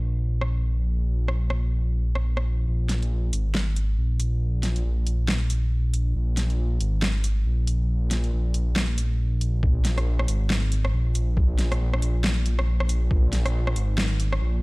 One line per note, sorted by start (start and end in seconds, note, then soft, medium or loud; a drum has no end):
0.00 2.66 A#1 medium
0.41 cross-stick medium
1.28 cross-stick medium
1.50 cross-stick medium
2.15 cross-stick medium
2.37 cross-stick medium
2.68 3.31 A#1 loud
2.89 snare medium
2.89 closed hi-hat medium
3.03 closed hi-hat soft
3.33 3.97 G#1 medium
3.33 closed hi-hat medium
3.55 snare loud
3.76 closed hi-hat medium
3.98 4.83 A#1 loud
4.20 closed hi-hat medium
4.63 snare medium
4.63 closed hi-hat medium
4.76 closed hi-hat soft
4.85 6.14 A#1 medium
5.07 closed hi-hat medium
5.28 snare loud
5.50 closed hi-hat medium
5.94 closed hi-hat medium
6.15 6.79 A#1 medium
6.37 snare medium
6.37 closed hi-hat medium
6.50 closed hi-hat soft
6.80 7.44 G#1 loud
6.80 closed hi-hat medium
7.02 snare loud
7.24 closed hi-hat medium
7.46 8.31 A#1 loud
7.67 closed hi-hat medium
8.11 snare medium
8.11 closed hi-hat medium
8.24 closed hi-hat soft
8.33 9.62 A#1 loud
8.54 closed hi-hat medium
8.76 snare loud
8.98 closed hi-hat medium
9.41 closed hi-hat medium
9.63 10.27 A#1 loud
9.63 kick loud
9.85 snare medium
9.85 closed hi-hat medium
9.98 cross-stick medium
9.98 closed hi-hat soft
10.19 cross-stick medium
10.28 10.92 G#1 loud
10.28 closed hi-hat medium
10.50 snare loud
10.72 closed hi-hat medium
10.85 cross-stick medium
10.94 11.79 A#1 loud
11.15 closed hi-hat medium
11.37 kick loud
11.58 snare medium
11.58 closed hi-hat medium
11.72 cross-stick medium
11.72 closed hi-hat soft
11.81 13.10 A#1 loud
11.94 cross-stick medium
12.02 closed hi-hat medium
12.24 snare loud
12.46 closed hi-hat medium
12.59 cross-stick medium
12.80 cross-stick medium
12.89 closed hi-hat medium
13.11 13.75 A#1 loud
13.11 kick loud
13.33 snare medium
13.33 closed hi-hat medium
13.46 cross-stick medium
13.46 closed hi-hat soft
13.67 cross-stick medium
13.76 14.40 G#1 loud
13.76 closed hi-hat medium
13.98 snare loud
14.20 closed hi-hat medium
14.33 cross-stick medium
14.41 14.62 A#1 loud